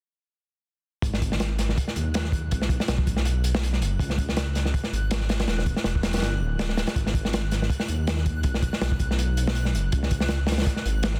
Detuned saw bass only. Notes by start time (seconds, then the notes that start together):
1.02 G#1
1.96 D#2
2.52 B1
2.88 B1
3.81 F#1
3.99 C#2
4.92 G#1
5.48 E1
5.85 E1
6.22 G1
6.40 D1
6.96 G#1
7.89 D#2
8.44 B1
8.81 B1
9.74 F#1
9.93 C#2
10.85 G#1